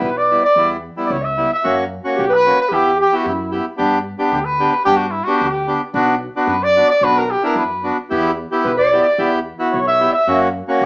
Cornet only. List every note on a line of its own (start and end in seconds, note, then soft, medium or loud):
0.03 0.19 B4 medium
0.17 0.44 D5 loud
0.45 0.69 D5 medium
1.06 1.14 D5 medium
1.12 1.27 C#5 medium
1.25 1.51 E5 medium
1.53 1.77 E5 medium
2.19 2.35 G4 medium
2.33 2.59 B4 loud
2.61 2.75 B4 medium
2.73 2.99 G4 loud
3.01 3.17 G4 medium
3.16 3.27 F#4 medium
3.28 3.64 E4 medium
4.33 4.46 G4 medium
4.45 4.71 B4 loud
4.72 4.85 B4 medium
4.85 4.98 G4 loud
4.97 5.13 F#4 medium
5.11 5.25 E4 medium
5.24 5.37 F#4 medium
5.37 5.48 F#4 medium
5.48 5.79 G4 medium
6.48 6.65 B4 medium
6.63 6.89 D5 loud
6.90 7.05 D5 loud
7.04 7.20 B4 loud
7.18 7.32 A#4 medium
7.31 7.44 G4 medium
7.45 7.57 A#4 medium
7.58 7.95 B4 medium
8.65 8.78 B4 medium
8.78 9.02 D5 medium
9.02 9.29 D5 medium
9.73 9.86 C#5 medium
9.87 10.12 E5 loud
10.13 10.39 E5 medium
10.82 10.86 G4 medium